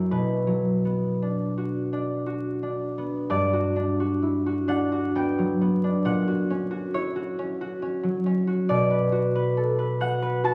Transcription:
0.00 0.14 F#2 soft
0.00 0.46 F#3 soft
0.00 0.14 A#3 soft
0.00 0.15 E4 soft
0.00 0.14 C#5 medium
0.11 3.35 B2 soft
0.11 4.01 B4 soft
0.47 4.37 F#3 soft
0.85 2.97 B3 soft
1.22 1.91 D4 soft
1.58 2.25 F#4 soft
1.93 2.62 D4 soft
2.26 3.52 F#4 soft
2.63 3.75 D4 soft
2.98 5.14 B3 soft
3.30 6.08 G2 medium
3.30 6.08 D5 medium
3.53 3.99 F#4 soft
3.76 4.67 D4 soft
4.00 4.45 F#4 soft
4.22 4.62 E4 soft
4.46 4.91 F#4 soft
4.68 5.83 D4 medium
4.68 6.04 F#5 medium
4.92 6.26 F#4 soft
5.15 5.60 B3 soft
5.15 6.09 G5 medium
5.38 8.02 F#3 soft
5.61 6.09 B3 soft
5.84 6.09 D4 soft
6.05 8.73 A#2 medium
6.05 9.95 F#5 medium
6.28 6.70 F#4 soft
6.50 7.37 C#4 soft
6.71 7.14 F#4 soft
6.94 7.32 E4 soft
6.94 8.74 C#5 medium
7.16 7.60 F#4 soft
7.39 7.81 C#4 medium
7.61 8.46 F#4 medium
7.82 8.25 C#4 soft
8.03 10.54 F#3 soft
8.26 8.73 C#4 soft
8.47 9.11 F#4 soft
8.69 10.54 B2 medium
8.69 10.54 D5 medium
8.90 9.34 B4 soft
9.12 9.99 F#4 soft
9.35 9.77 B4 soft
9.57 9.95 A4 soft
9.79 10.21 B4 soft
10.01 10.43 F#4 medium
10.01 10.54 F#5 medium
10.22 10.54 B4 medium
10.44 10.54 F#4 soft
10.44 10.54 A5 medium

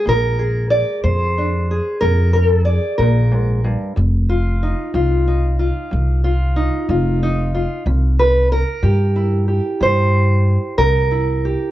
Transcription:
0.00 1.36 G#3 soft
0.06 0.82 A#1 medium
0.06 0.64 A#2 medium
0.06 0.70 A#4 loud
0.39 1.69 G#4 medium
0.70 1.03 D5 medium
1.04 1.79 F2 medium
1.04 1.62 A#2 medium
1.04 2.00 C5 medium
1.38 3.94 D4 soft
1.71 2.32 G#4 soft
2.01 2.77 F2 medium
2.01 2.60 A#2 medium
2.01 2.33 A#4 medium
2.33 2.46 A#4 medium
2.46 2.70 A4 medium
2.65 2.97 D5 loud
2.70 3.31 G#4 medium
2.98 3.74 A#1 medium
2.98 3.32 A#2 medium
2.98 3.96 A#4 medium
3.31 3.64 G#2 medium
3.64 3.96 G2 medium
3.96 4.72 F1 medium
3.96 4.55 F2 medium
4.30 4.94 F4 medium
4.63 5.26 D#4 medium
4.94 5.69 C2 medium
4.94 5.53 F2 medium
4.94 5.58 F4 medium
5.28 6.55 D#4 soft
5.59 6.23 F4 soft
5.91 6.67 C2 medium
5.91 6.50 F2 medium
6.24 6.89 F4 medium
6.56 7.21 D#4 medium
6.89 7.64 F1 medium
6.89 7.47 F2 medium
6.89 7.53 F4 medium
7.23 7.83 D#4 medium
7.55 7.83 F4 medium
7.86 8.61 C2 medium
7.86 8.45 C3 medium
8.19 8.51 B4 medium
8.52 9.81 A#4 medium
8.82 9.58 G2 medium
8.82 9.41 C3 medium
8.82 9.47 G4 soft
9.16 11.10 E4 soft
9.48 11.43 G4 soft
9.80 10.56 G2 medium
9.80 10.39 C3 medium
9.80 10.78 C5 loud
10.78 11.53 C2 medium
10.78 11.37 C3 medium
10.78 11.71 A#4 loud
11.11 11.71 E4 soft
11.45 11.71 G4 soft

